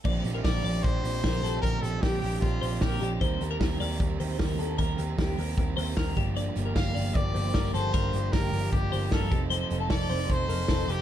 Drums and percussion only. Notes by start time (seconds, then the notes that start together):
0.05 kick, crash
0.24 hi-hat pedal, open hi-hat
0.44 kick, snare, hi-hat pedal, open hi-hat
0.65 hi-hat pedal, open hi-hat
0.84 kick
1.04 hi-hat pedal, open hi-hat
1.24 kick, snare, hi-hat pedal, open hi-hat
1.44 hi-hat pedal, open hi-hat
1.63 kick, hi-hat pedal, open hi-hat
1.83 hi-hat pedal, open hi-hat
2.03 kick, snare, hi-hat pedal, open hi-hat
2.23 hi-hat pedal, open hi-hat
2.42 kick, hi-hat pedal, open hi-hat
2.62 hi-hat pedal, open hi-hat
2.81 kick, snare, hi-hat pedal, open hi-hat
3.01 hi-hat pedal, open hi-hat
3.21 kick, hi-hat pedal, open hi-hat
3.41 hi-hat pedal, open hi-hat
3.61 kick, snare, hi-hat pedal, open hi-hat
3.80 hi-hat pedal, open hi-hat
4.00 kick, hi-hat pedal, open hi-hat
4.20 hi-hat pedal, open hi-hat
4.39 kick, snare, hi-hat pedal, open hi-hat
4.59 hi-hat pedal, open hi-hat
4.79 kick, hi-hat pedal, open hi-hat
4.98 hi-hat pedal, open hi-hat
5.18 kick, snare, hi-hat pedal, open hi-hat
5.38 hi-hat pedal, open hi-hat
5.57 kick, hi-hat pedal, open hi-hat
5.78 hi-hat pedal, open hi-hat
5.97 kick, snare, hi-hat pedal, open hi-hat
6.17 kick, hi-hat pedal, open hi-hat
6.36 hi-hat pedal, open hi-hat
6.55 hi-hat pedal, open hi-hat
6.76 kick, snare, hi-hat pedal, open hi-hat
6.96 hi-hat pedal, open hi-hat
7.15 kick
7.35 hi-hat pedal, open hi-hat
7.54 kick, snare, hi-hat pedal, open hi-hat
7.74 hi-hat pedal, open hi-hat
7.94 kick, hi-hat pedal, open hi-hat
8.13 hi-hat pedal, open hi-hat
8.33 kick, snare, hi-hat pedal, open hi-hat
8.52 hi-hat pedal, open hi-hat
8.72 kick, hi-hat pedal, open hi-hat
8.92 hi-hat pedal, open hi-hat
9.12 kick, snare, hi-hat pedal, open hi-hat
9.31 kick, hi-hat pedal, open hi-hat
9.51 hi-hat pedal, open hi-hat
9.70 hi-hat pedal, open hi-hat
9.90 kick, snare, hi-hat pedal, open hi-hat
10.10 hi-hat pedal, open hi-hat
10.29 kick, hi-hat pedal, open hi-hat
10.49 hi-hat pedal, open hi-hat
10.68 kick, snare, hi-hat pedal, open hi-hat
10.89 hi-hat pedal, open hi-hat